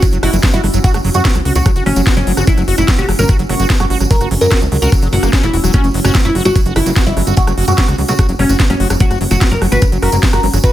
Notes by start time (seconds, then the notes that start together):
Already playing: C#4 F#4 F#5
0.02 F#3, kick, closed hi-hat, tambourine
0.13 F#1 F#3, closed hi-hat, tambourine
0.23 F#1 E4 F#4, cross-stick, open hi-hat
0.33 F#1 F#3 A#3, closed hi-hat, tambourine
0.43 F#3, kick, cross-stick, snare, closed hi-hat, tambourine
0.53 G1 E4 F#4, closed hi-hat, tambourine
0.64 G1 F#3, cross-stick, open hi-hat
0.73 G1 F#3, closed hi-hat, tambourine
0.84 F#4, kick, closed hi-hat, tambourine
0.94 F#1 F#3, cross-stick, closed hi-hat, tambourine
1.04 F#1 F#3, open hi-hat
1.14 F#2 F#3 F#4, cross-stick, closed hi-hat, tambourine
1.25 F#3, kick, snare, closed hi-hat, tambourine
1.35 C#2 F#3, cross-stick, closed hi-hat, tambourine
1.45 C#2 F#4, open hi-hat
1.55 C#2 F#3 F#4, closed hi-hat, tambourine
1.66 F#3, kick, cross-stick, closed hi-hat, tambourine
1.76 F#1 F#4, closed hi-hat, tambourine
1.86 F#1 F#3 C#4, cross-stick, open hi-hat
1.96 F#1 F#3, closed hi-hat, tambourine
2.07 F#4, kick, cross-stick, snare, closed hi-hat
2.17 F#1 F#3 C#4, closed hi-hat, tambourine
2.27 F#1 F#3, open hi-hat
2.37 F#1 F#3 F#4, cross-stick, closed hi-hat, tambourine
2.47 F#3 E4, kick, closed hi-hat, tambourine
2.58 F#1 F#3, cross-stick, closed hi-hat, tambourine
2.68 F#1 F#4, open hi-hat
2.78 F#1 F#3 E4, cross-stick, closed hi-hat, tambourine
2.88 F#3, kick, snare, closed hi-hat, tambourine
2.98 F#1 F#4 G4, closed hi-hat, tambourine
3.09 F#1 F#3, cross-stick, open hi-hat
3.19 G1 F#3 A#4, closed hi-hat, tambourine
3.29 F#4, kick, cross-stick, closed hi-hat, tambourine
3.39 F#1 F#3, closed hi-hat, tambourine
3.49 F#1 F#3 F#4, cross-stick, open hi-hat
3.60 F#1 A#3 F#4, closed hi-hat, tambourine
3.70 F#3 A#3, kick, snare, closed hi-hat, tambourine
3.80 G1 F#3 F#4, cross-stick, closed hi-hat, tambourine
3.90 G1 F#4, open hi-hat
4.00 G1 F#3, cross-stick, closed hi-hat, tambourine
4.11 F#3 A#4, kick, closed hi-hat, tambourine
4.20 F#1 F#4, cross-stick, closed hi-hat, tambourine
4.31 F#1 F#3, open hi-hat
4.41 F#2 F#3 A#4, closed hi-hat, tambourine
4.51 F#4, kick, cross-stick, snare, closed hi-hat, tambourine
4.61 C#2 F#3, closed hi-hat, tambourine
4.72 C#2 F#3, open hi-hat
4.82 C#2 F#4 A#4, closed hi-hat, tambourine
4.92 F#3, kick, cross-stick, closed hi-hat, tambourine
5.02 F#1 F#3, closed hi-hat, tambourine
5.13 F#1 F#3 F#4, open hi-hat
5.23 F#1 A#3, cross-stick, closed hi-hat, tambourine
5.33 C#4, kick, snare, closed hi-hat, tambourine
5.43 E1 F#3 E4, cross-stick, closed hi-hat, tambourine
5.53 E1 F#4, open hi-hat
5.64 E1 F#3, cross-stick, closed hi-hat, tambourine
5.73 C#4 F#4, kick, cross-stick, closed hi-hat, tambourine
5.84 F#1 F#3, closed hi-hat, tambourine
5.94 F#1 F#3, open hi-hat
6.05 F#1 C#4 F#4, cross-stick, closed hi-hat, tambourine
6.15 F#3, kick, snare, closed hi-hat, tambourine
6.25 F#1 F#3 E4, cross-stick, closed hi-hat, tambourine
6.35 F#1 F#4, open hi-hat
6.45 G1 F#3 F#4, cross-stick, closed hi-hat, tambourine
6.56 F#3, kick, closed hi-hat, tambourine
6.66 F#1 F#4, closed hi-hat, tambourine
6.76 F#1 F#3 E4, cross-stick, open hi-hat
6.86 F#1 F#3 A#3, closed hi-hat, tambourine
6.96 A#3 F#4, kick, cross-stick, snare, closed hi-hat, tambourine
7.06 G1 F#3 E4, closed hi-hat, tambourine
7.17 G1 F#3, cross-stick, open hi-hat
7.27 G1 F#4, closed hi-hat, tambourine
7.37 F#3 F#4, kick, closed hi-hat, tambourine
7.47 F#1 F#3, cross-stick, closed hi-hat, tambourine
7.58 F#1 F#3 F#4, open hi-hat
7.68 F#2 F#3 F#4, cross-stick, closed hi-hat, tambourine
7.78 F#3, kick, snare, closed hi-hat, tambourine
7.88 C#2 F#4, cross-stick, closed hi-hat, tambourine
7.98 C#2 F#3, open hi-hat
8.08 C#2 F#3 F#4, closed hi-hat, tambourine
8.19 F#4, kick, cross-stick, closed hi-hat, tambourine
8.29 F#1 F#3, closed hi-hat, tambourine
8.39 F#1 F#3 C#4, cross-stick, open hi-hat
8.49 F#1 F#4, closed hi-hat, tambourine
8.60 F#3, kick, cross-stick, snare, closed hi-hat
8.70 F#1 F#3 C#4, closed hi-hat, tambourine
8.80 F#1 F#3 F#4, open hi-hat
8.90 F#1 F#3, cross-stick, closed hi-hat, tambourine
9.00 F#3 F#4, kick, closed hi-hat, tambourine
9.11 F#1 F#4, cross-stick, closed hi-hat, tambourine
9.21 F#1 F#3, open hi-hat
9.31 F#1 F#3 F#4, cross-stick, closed hi-hat, tambourine
9.41 F#4, kick, snare, closed hi-hat
9.51 F#1 F#3 A#4, closed hi-hat, tambourine
9.62 F#1 F#3, cross-stick, open hi-hat
9.72 G1 F#4 B4, closed hi-hat, tambourine
9.82 F#3, kick, cross-stick, closed hi-hat, tambourine
9.92 F#1 F#3, closed hi-hat, tambourine
10.02 F#1 F#4 A#4, cross-stick, open hi-hat
10.12 F#1 F#3 A#3, closed hi-hat, tambourine
10.23 F#3 A#3, kick, snare, closed hi-hat, tambourine
10.33 G1 F#4 A#4, cross-stick, closed hi-hat, tambourine
10.43 G1 F#3, open hi-hat
10.53 G1 F#3, cross-stick, closed hi-hat, tambourine
10.64 F#4 B4, kick, closed hi-hat, tambourine